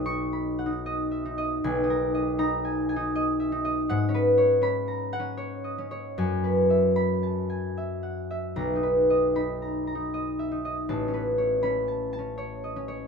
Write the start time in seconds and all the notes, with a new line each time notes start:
Already playing: B1 C#5 D#5 F#5
0.05 D#4 C#6
0.33 B5
0.59 F#5
0.66 D#4
0.86 D#5
1.11 E5
1.25 D#4
1.38 D#5
1.64 B1 G#5
1.84 D#4
1.90 A#4
2.15 D#5
2.39 D#4 A#5
2.65 G#5
2.89 G#5
2.96 D#4
3.16 D#5
3.40 E5
3.52 D#4
3.65 D#5
3.89 G#2 F#5
4.09 C#4
4.14 B4
4.38 C#5
4.62 C#4 B5
4.88 A#5
5.13 F#5
5.20 C#4
5.37 C#5
5.64 D#5
5.78 C#4
5.91 C#5
6.18 F#2 G#5
6.44 B4
6.70 E5
6.96 B5
7.23 A5
7.50 G#5
7.77 E5
8.03 F#5
8.31 E5
8.56 B1 A#5
8.76 D#4
8.83 B4
9.10 D#5
9.35 D#4 B5
9.62 A#5
9.87 A#5
9.95 D#4
10.14 D#5
10.39 E5
10.52 D#4
10.65 D#5
10.89 A1 A5
11.08 C#4
11.14 B4
11.38 C#5
11.63 C#4 B5
11.88 A5
12.13 A5
12.19 C#4
12.38 C#5
12.64 D#5
12.76 C#4
12.88 C#5